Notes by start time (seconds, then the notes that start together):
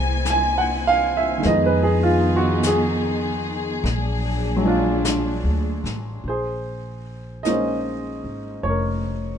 Already playing: C2 E3 G3 G#3 A#3 C4 G#5
0.25 brush sweep, snare, hi-hat pedal
0.30 G#5
0.58 F#5
0.87 F5
1.17 E5
1.38 D#3 G#3
1.43 F2 B3 D#5, brush sweep, snare
1.47 D#3 B3 D#4 G#4
1.66 B4
1.83 G#4
2.03 F4
2.36 F#4
2.63 G#4, brush sweep, snare, hi-hat pedal
3.84 A#1 F#3 A#3 D4, brush sweep, snare
4.56 F#3
4.61 G#3
4.66 D4 F4
5.05 brush sweep, snare, hi-hat pedal
5.44 D2
5.84 A1, snare
6.24 A#1, brush sweep
6.28 G#4 C5
7.43 G#3 A#3 C#4 D#4 D#5, brush sweep, snare, hi-hat pedal
7.48 C5
8.24 G#1
8.63 F1 C#5, brush sweep
8.69 A#4